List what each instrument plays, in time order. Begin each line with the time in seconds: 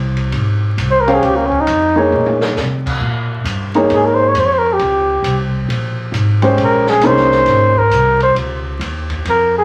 Already playing: upright bass C2
0.17 ride
0.32 upright bass G#1, ride
0.77 upright bass C2, hi-hat pedal, ride
0.91 trumpet C5
1.00 trumpet A#4
1.07 grand piano C#4 G4 C5 F5, ride
1.14 trumpet G#4
1.22 upright bass C#2, trumpet G4, ride
1.36 trumpet A#3
1.47 trumpet C#4
1.52 kick
1.61 trumpet D#4
1.67 upright bass F2, hi-hat pedal, ride
1.96 grand piano A#3 D#4 G#4 C#5
2.12 upright bass A#2, high tom
2.26 high tom
2.41 snare
2.56 upright bass C3, snare, hi-hat pedal
2.86 kick, crash
3.00 upright bass A#2
3.44 upright bass G2, hi-hat pedal, ride
3.74 grand piano A#3 D#4 G#4 C#5, ride
3.90 upright bass G#2, ride
3.95 trumpet G#4
4.05 trumpet A#4
4.14 trumpet C5
4.28 trumpet C#5
4.35 upright bass F2, hi-hat pedal, ride
4.39 trumpet C5
4.45 trumpet C#5
4.53 trumpet C5
4.58 trumpet A#4
4.73 trumpet G4
4.79 upright bass C#2, ride
5.22 upright bass C2, hi-hat pedal, ride
5.68 upright bass A#1, ride
6.12 upright bass G#1, hi-hat pedal, ride
6.42 grand piano G#3 C#4 G4 C5, ride
6.57 upright bass A#1, ride
6.64 trumpet A#4
6.87 trumpet G#4, snare
7.01 upright bass C2, grand piano A#3 C#4 D#4 G#4, hi-hat pedal, ride
7.06 trumpet C5
7.17 snare
7.32 snare
7.46 upright bass G#1, snare, ride
7.76 trumpet A#4, kick
7.90 upright bass C2, hi-hat pedal, ride
8.20 trumpet C5, ride
8.35 upright bass C#2, ride
8.79 upright bass D#2, hi-hat pedal, ride
9.10 kick, ride
9.25 upright bass F2, ride
9.29 trumpet A#4
9.58 trumpet G#4